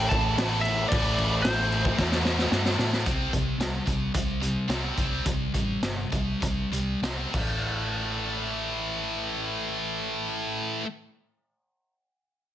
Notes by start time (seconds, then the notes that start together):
Already playing: A2 E3 A3
0.09 A1 A5, kick, crash
0.37 A1, snare, crash
0.61 E5, crash
0.89 A1 A2 E3 D5, kick, crash
0.94 A3
1.18 A1, crash
1.42 A1 C5, snare, crash
1.72 crash
1.85 kick
1.98 E2, kick, snare
2.12 snare
2.25 snare
2.39 snare
2.52 G2, snare
2.65 snare
2.79 A2, snare
2.93 snare
3.05 C2 C3 G3 C4, kick, closed hi-hat
3.32 C2 C3 G3, kick, closed hi-hat
3.58 C2 C3 G3, snare, closed hi-hat
3.86 C2 C3 G3, kick, closed hi-hat
4.14 C2 C3 G3, kick, closed hi-hat
4.42 C3 G3, closed hi-hat
4.68 C2 C3 G3 C4, snare, closed hi-hat
4.96 C2 C3 G3 C4, kick, closed hi-hat
5.25 C2 C3 G3, kick, closed hi-hat
5.54 A1 C3 G3, kick, closed hi-hat
5.82 G1 C3 G3, snare, closed hi-hat
6.12 C2 C3 G3, kick, closed hi-hat
6.41 C2 C3 G3, kick, closed hi-hat
6.72 C2 C3 G3, closed hi-hat
7.02 C2 C3 G3 C4, snare, closed hi-hat
7.32 A1 A2 E3, kick, crash
7.37 A3